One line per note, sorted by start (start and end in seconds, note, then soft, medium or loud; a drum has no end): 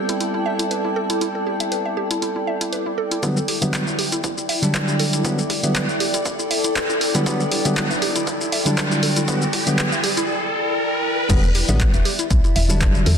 0.00 3.20 G3 medium
0.00 3.20 B3 medium
0.00 3.20 C4 medium
0.00 3.21 E4 medium
0.00 3.22 E4 loud
0.00 3.19 A4 medium
0.00 3.23 A4 loud
0.00 3.23 D5 medium
0.00 10.29 G5 medium
0.00 3.19 A5 medium
0.09 0.15 E4 loud
0.09 closed hi-hat medium
0.20 0.28 E4 medium
0.20 closed hi-hat soft
0.34 0.40 E4 medium
0.46 0.53 E5 medium
0.59 0.66 E4 medium
0.59 closed hi-hat medium
0.71 0.82 B4 medium
0.71 closed hi-hat soft
0.85 0.91 E4 medium
0.96 1.01 A4 loud
1.10 1.16 E4 medium
1.10 closed hi-hat medium
1.21 1.29 E4 medium
1.21 closed hi-hat medium
1.35 1.41 A4 medium
1.47 1.51 G4 medium
1.60 1.64 E5 medium
1.60 closed hi-hat medium
1.72 1.83 B4 medium
1.72 closed hi-hat soft
1.85 1.95 E5 medium
1.97 2.04 G4 medium
2.11 2.17 E4 loud
2.11 closed hi-hat medium
2.22 2.30 E4 medium
2.22 closed hi-hat soft
2.36 2.42 E4 medium
2.47 2.55 E5 medium
2.61 2.67 E4 medium
2.61 closed hi-hat medium
2.73 2.84 B4 medium
2.73 closed hi-hat soft
2.86 2.92 E4 medium
2.98 3.02 A4 loud
3.11 3.18 E4 medium
3.11 closed hi-hat medium
3.23 3.37 D3 medium
3.23 3.37 F#3 medium
3.23 3.37 G3 medium
3.23 3.38 B3 medium
3.23 3.30 E4 medium
3.23 11.26 E4 medium
3.23 10.29 E4 medium
3.23 11.26 D5 medium
3.23 11.26 G5 medium
3.23 kick loud
3.23 closed hi-hat soft
3.23 riser medium
3.23 shaker medium
3.29 10.29 D5 medium
3.37 3.43 A4 medium
3.37 10.29 A4 medium
3.37 shaker soft
3.48 3.53 G4 medium
3.48 open hi-hat loud
3.61 3.83 D3 medium
3.61 3.83 F#3 medium
3.61 3.83 G3 medium
3.61 3.83 B3 medium
3.61 3.66 E5 medium
3.61 closed hi-hat medium
3.61 shaker medium
3.73 3.85 B4 medium
3.73 kick loud
3.73 clap loud
3.73 closed hi-hat soft
3.73 shaker soft
3.87 3.96 E5 medium
3.87 shaker soft
3.99 4.06 G4 loud
3.99 open hi-hat medium
4.12 4.19 E4 loud
4.12 closed hi-hat medium
4.12 shaker medium
4.24 4.31 E4 medium
4.24 kick loud
4.24 closed hi-hat medium
4.24 shaker soft
4.38 4.44 E4 medium
4.38 shaker soft
4.49 4.56 E5 loud
4.49 open hi-hat loud
4.62 5.21 D3 medium
4.62 5.22 F#3 medium
4.62 5.22 G3 medium
4.62 5.22 D4 medium
4.62 4.69 E4 medium
4.62 closed hi-hat medium
4.62 shaker medium
4.74 4.85 B4 medium
4.74 kick loud
4.74 clap loud
4.74 closed hi-hat soft
4.74 shaker medium
4.88 4.94 E4 medium
4.88 shaker soft
4.99 5.04 A4 loud
4.99 open hi-hat medium
5.13 5.19 E4 medium
5.13 closed hi-hat medium
5.13 shaker medium
5.24 5.39 D3 medium
5.24 5.39 F#3 medium
5.24 5.39 G3 medium
5.24 5.39 B3 medium
5.24 5.32 E4 medium
5.24 kick loud
5.24 closed hi-hat medium
5.24 shaker medium
5.38 5.45 A4 medium
5.38 shaker soft
5.50 5.54 G4 medium
5.50 kick medium
5.50 open hi-hat loud
5.63 5.84 D3 medium
5.63 5.85 F#3 medium
5.63 5.85 G3 medium
5.63 5.85 B3 medium
5.63 5.67 E5 medium
5.63 closed hi-hat medium
5.63 shaker medium
5.75 5.86 B4 medium
5.75 kick loud
5.75 clap loud
5.75 closed hi-hat soft
5.75 shaker soft
5.89 5.98 E5 medium
5.89 shaker soft
6.00 6.08 G4 loud
6.00 open hi-hat medium
6.14 6.20 E4 loud
6.14 closed hi-hat medium
6.14 shaker medium
6.25 6.33 E4 medium
6.25 kick loud
6.25 closed hi-hat soft
6.25 shaker soft
6.39 6.45 E4 medium
6.39 shaker soft
6.51 6.58 E5 loud
6.51 open hi-hat loud
6.64 6.71 E4 medium
6.64 closed hi-hat medium
6.64 shaker medium
6.76 6.87 B4 medium
6.76 kick loud
6.76 clap loud
6.76 closed hi-hat medium
6.76 shaker medium
6.90 6.96 E4 medium
6.90 shaker soft
7.01 7.06 A4 loud
7.01 open hi-hat medium
7.14 7.24 D3 medium
7.14 7.25 F#3 medium
7.14 7.25 G3 medium
7.14 7.25 B3 medium
7.14 7.21 E4 loud
7.14 closed hi-hat medium
7.14 shaker medium
7.26 7.41 D3 medium
7.26 7.41 F#3 medium
7.26 7.41 G3 medium
7.26 7.41 B3 medium
7.26 7.34 E4 medium
7.26 kick loud
7.26 closed hi-hat medium
7.26 shaker medium
7.40 7.46 A4 medium
7.40 shaker soft
7.52 7.56 G4 medium
7.52 open hi-hat loud
7.65 7.86 D3 medium
7.65 7.86 F#3 medium
7.65 7.86 G3 medium
7.65 7.87 B3 loud
7.65 7.69 E5 medium
7.65 closed hi-hat medium
7.65 shaker medium
7.77 7.88 B4 medium
7.77 kick loud
7.77 clap loud
7.77 closed hi-hat soft
7.77 shaker medium
7.90 8.00 E5 medium
7.90 shaker soft
8.02 8.09 G4 loud
8.02 open hi-hat medium
8.16 8.22 E4 loud
8.16 closed hi-hat medium
8.16 shaker medium
8.27 8.35 E4 medium
8.27 kick loud
8.27 closed hi-hat soft
8.27 shaker medium
8.41 8.47 E4 medium
8.41 shaker soft
8.52 8.60 E5 loud
8.52 open hi-hat loud
8.65 9.25 D3 medium
8.65 9.25 F#3 medium
8.65 9.25 G3 medium
8.65 9.26 D4 medium
8.65 8.72 E4 medium
8.65 closed hi-hat medium
8.65 shaker medium
8.78 8.89 B4 medium
8.78 kick loud
8.78 clap loud
8.78 closed hi-hat medium
8.78 shaker soft
8.91 8.98 E4 medium
8.91 shaker soft
9.03 9.07 A4 loud
9.03 open hi-hat loud
9.16 9.23 E4 loud
9.16 closed hi-hat medium
9.16 shaker medium
9.28 9.42 D3 medium
9.28 9.42 F#3 medium
9.28 9.42 G3 medium
9.28 9.43 B3 medium
9.28 9.35 E4 medium
9.28 kick loud
9.28 closed hi-hat medium
9.28 shaker medium
9.42 9.48 A4 medium
9.42 shaker soft
9.53 9.58 G4 medium
9.53 kick medium
9.53 open hi-hat loud
9.66 9.88 D3 medium
9.66 9.88 F#3 medium
9.66 9.88 G3 medium
9.66 9.88 B3 medium
9.66 9.71 E5 medium
9.66 closed hi-hat medium
9.66 shaker medium
9.78 9.90 B4 medium
9.78 kick loud
9.78 clap loud
9.78 closed hi-hat soft
9.78 shaker medium
9.92 10.01 E5 medium
9.92 shaker soft
10.04 10.11 G4 loud
10.04 open hi-hat loud
10.17 10.24 E4 loud
10.17 closed hi-hat medium
10.17 shaker medium
11.29 11.63 E1 loud
11.29 11.44 D3 medium
11.29 11.44 F#3 medium
11.29 11.44 G3 medium
11.29 11.44 B3 loud
11.29 13.18 E4 medium
11.29 11.37 E4 medium
11.29 13.18 D5 medium
11.29 13.18 E5 medium
11.29 kick loud
11.29 closed hi-hat medium
11.29 crash loud
11.29 shaker medium
11.43 11.50 A4 medium
11.43 shaker soft
11.55 11.59 G4 medium
11.55 open hi-hat loud
11.68 11.87 A1 loud
11.68 11.89 D3 medium
11.68 11.90 F#3 medium
11.68 11.90 G3 medium
11.68 11.90 B3 loud
11.68 11.72 E5 medium
11.68 closed hi-hat soft
11.68 shaker medium
11.80 11.91 B4 medium
11.80 kick loud
11.80 clap loud
11.80 closed hi-hat medium
11.80 shaker medium
11.94 12.02 E1 medium
11.94 12.03 E5 medium
11.94 closed hi-hat medium
11.94 shaker soft
12.05 12.13 G4 loud
12.05 open hi-hat medium
12.19 12.25 E4 loud
12.19 closed hi-hat medium
12.19 shaker medium
12.30 12.41 B1 medium
12.30 12.38 E4 medium
12.30 kick loud
12.30 closed hi-hat medium
12.30 shaker medium
12.44 12.50 E4 medium
12.44 closed hi-hat soft
12.44 shaker soft
12.56 13.01 E1 medium
12.56 12.63 E5 loud
12.56 open hi-hat loud
12.69 13.18 D3 medium
12.69 13.18 F#3 medium
12.69 13.18 G3 medium
12.69 13.18 D4 medium
12.69 12.76 E4 medium
12.69 shaker medium
12.81 12.92 B4 medium
12.81 kick loud
12.81 clap loud
12.81 closed hi-hat medium
12.81 shaker medium
12.95 13.01 E4 medium
12.95 shaker soft
13.06 13.16 E2 medium
13.06 13.11 A4 loud
13.06 open hi-hat medium